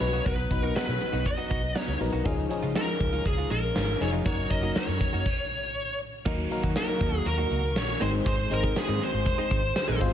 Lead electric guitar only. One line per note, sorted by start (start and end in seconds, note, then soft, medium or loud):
0.00 0.26 C#5 medium
0.26 0.64 B4 loud
0.64 0.75 A#4 loud
0.76 1.26 B4 medium
1.27 1.79 D#5 medium
1.79 1.97 C#5 medium
2.77 3.23 A#4 medium
3.27 3.51 G#4 medium
3.51 4.03 A#4 medium
4.02 4.08 C#5 medium
4.26 4.50 C#5 loud
4.51 4.77 D#5 loud
4.77 5.98 C#5 medium
6.77 7.26 A#4 medium
7.27 7.78 A#4 loud
7.78 8.02 C#5 loud
8.02 8.09 C5 loud
8.28 8.52 C5 loud
8.53 8.76 A#4 medium
8.79 9.03 G#4 medium
9.03 9.98 C5 medium